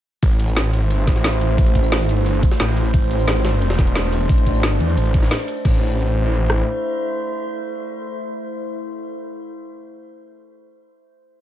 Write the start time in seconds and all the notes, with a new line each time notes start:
0.23 A1 A3 E4 C5, kick, closed hi-hat, ride, tambourine
0.40 closed hi-hat, ride
0.48 tambourine
0.56 snare, closed hi-hat, ride, tambourine
0.73 closed hi-hat, ride
0.82 G#1
0.90 closed hi-hat, ride, tambourine
1.07 A1, kick, snare, closed hi-hat, ride, tambourine
1.16 snare, tambourine
1.24 snare, closed hi-hat, ride, tambourine
1.33 ride, tambourine
1.41 closed hi-hat, open hi-hat
1.50 tambourine
1.58 kick, closed hi-hat, ride, tambourine
1.67 ride
1.75 kick, closed hi-hat, ride, tambourine
1.84 tambourine
1.92 snare, closed hi-hat, ride, tambourine
2.01 G#1
2.09 closed hi-hat, ride
2.26 G1, closed hi-hat, ride, tambourine
2.34 ride
2.43 kick, closed hi-hat, ride, tambourine
2.51 snare, tambourine
2.60 A1, snare, closed hi-hat, ride, tambourine
2.68 ride, tambourine
2.77 closed hi-hat, ride
2.85 tambourine
2.94 A1 D4, kick, closed hi-hat, ride, tambourine
3.11 closed hi-hat, ride
3.19 tambourine
3.28 snare, closed hi-hat, ride, tambourine
3.45 snare, closed hi-hat, ride
3.62 closed hi-hat, ride, tambourine
3.70 snare, ride
3.79 E1, kick, snare, closed hi-hat, tambourine
3.87 ride, tambourine
3.95 snare, closed hi-hat, ride, tambourine
4.04 ride, tambourine
4.12 closed hi-hat, open hi-hat
4.21 tambourine
4.29 A1, kick, closed hi-hat, ride, tambourine
4.38 ride
4.46 kick, closed hi-hat, ride, tambourine
4.55 tambourine
4.63 snare, closed hi-hat, ride, tambourine
4.80 E2, closed hi-hat, ride
4.97 A1, closed hi-hat, ride, tambourine
5.06 ride
5.14 kick, closed hi-hat, ride, tambourine
5.23 snare, tambourine
5.31 snare, closed hi-hat, ride, tambourine
5.40 ride, tambourine
5.48 closed hi-hat, ride
5.56 tambourine
5.65 A1 A3 E4 C5, kick, crash
6.50 cross-stick